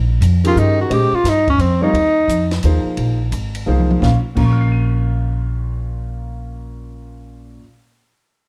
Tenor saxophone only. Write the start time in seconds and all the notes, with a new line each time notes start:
0.47 F4
0.58 D#4
0.81 F#4
0.93 G4
1.15 F4
1.29 D#4
1.50 C#4
1.61 C4
1.83 D#4